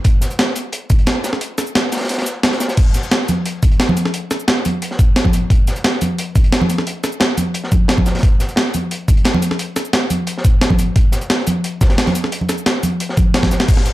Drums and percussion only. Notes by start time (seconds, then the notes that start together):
0.04 kick, closed hi-hat
0.21 snare, closed hi-hat, shaker
0.31 closed hi-hat, shaker
0.39 snare, closed hi-hat
0.48 snare
0.55 closed hi-hat, shaker
0.72 closed hi-hat
0.90 kick, closed hi-hat, shaker
0.99 closed hi-hat
1.07 snare, closed hi-hat
1.24 snare, closed hi-hat, shaker
1.33 snare
1.41 closed hi-hat
1.58 snare, closed hi-hat, shaker
1.67 shaker
1.75 snare, closed hi-hat
1.84 snare
1.92 snare, closed hi-hat, shaker
1.97 snare, closed hi-hat
2.01 snare, closed hi-hat
2.04 snare, closed hi-hat
2.09 snare, closed hi-hat
2.14 snare, closed hi-hat
2.18 snare, closed hi-hat
2.22 snare, closed hi-hat
2.26 closed hi-hat, shaker
2.43 snare, closed hi-hat
2.52 snare, closed hi-hat
2.60 snare, closed hi-hat, shaker
2.68 snare, closed hi-hat, shaker
2.77 kick, closed hi-hat, crash
2.94 snare, closed hi-hat, shaker
3.03 closed hi-hat, shaker
3.11 snare, closed hi-hat
3.21 snare
3.28 closed hi-hat, high conga, shaker
3.46 closed hi-hat
3.63 kick, closed hi-hat, shaker
3.71 closed hi-hat
3.80 snare, closed hi-hat
3.89 high conga
3.97 closed hi-hat, shaker
4.05 snare
4.14 closed hi-hat
4.31 snare, closed hi-hat, shaker
4.40 shaker
4.48 snare, closed hi-hat
4.57 snare
4.65 closed hi-hat, high conga, shaker
4.82 closed hi-hat
4.91 snare
4.99 kick, closed hi-hat, shaker
5.16 snare, closed hi-hat
5.25 kick, high conga
5.33 closed hi-hat, shaker
5.50 kick, closed hi-hat
5.67 snare, closed hi-hat, shaker
5.76 closed hi-hat, shaker
5.84 snare, closed hi-hat
5.93 snare
6.01 closed hi-hat, high conga, shaker
6.19 closed hi-hat
6.36 kick, closed hi-hat, shaker
6.44 closed hi-hat
6.52 snare, closed hi-hat
6.62 high conga
6.70 closed hi-hat, shaker
6.78 snare
6.87 closed hi-hat
7.04 snare, closed hi-hat, shaker
7.12 shaker
7.20 snare, closed hi-hat
7.29 snare
7.37 closed hi-hat, high conga, shaker
7.54 closed hi-hat
7.64 snare
7.72 kick, closed hi-hat, high conga, shaker
7.88 snare, closed hi-hat
7.98 kick, high conga
8.06 snare, closed hi-hat, shaker
8.15 snare, closed hi-hat
8.18 snare, closed hi-hat
8.23 kick, closed hi-hat
8.40 snare, closed hi-hat, shaker
8.49 closed hi-hat, shaker
8.56 snare, closed hi-hat
8.66 snare
8.74 closed hi-hat, high conga, shaker
8.91 closed hi-hat
9.08 kick, closed hi-hat, shaker
9.17 closed hi-hat
9.24 snare, closed hi-hat
9.34 high conga
9.42 closed hi-hat, shaker
9.51 snare
9.59 closed hi-hat
9.76 snare, closed hi-hat, shaker
9.85 shaker
9.93 snare, closed hi-hat
10.03 snare
10.10 closed hi-hat, high conga, shaker
10.27 closed hi-hat
10.38 snare
10.45 kick, closed hi-hat, shaker
10.61 snare, closed hi-hat
10.70 kick, high conga
10.79 closed hi-hat, shaker
10.96 kick, closed hi-hat
11.12 snare, closed hi-hat, shaker
11.21 closed hi-hat, shaker
11.30 snare, closed hi-hat
11.39 snare
11.47 closed hi-hat, high conga, shaker
11.64 closed hi-hat
11.81 kick, snare, closed hi-hat, shaker
11.90 snare, closed hi-hat
11.98 snare, closed hi-hat
12.06 snare, closed hi-hat, high conga
12.15 closed hi-hat, shaker
12.24 snare
12.32 closed hi-hat
12.41 high conga
12.49 snare, closed hi-hat, shaker
12.58 shaker
12.66 snare, closed hi-hat
12.75 snare
12.83 closed hi-hat, high conga, shaker
13.00 closed hi-hat
13.09 snare
13.17 kick, closed hi-hat, high conga, shaker
13.34 snare, closed hi-hat
13.43 kick, snare, high conga
13.51 snare, closed hi-hat, shaker
13.60 snare, shaker
13.68 kick, closed hi-hat, crash, shaker
13.77 snare
13.85 snare, closed hi-hat, shaker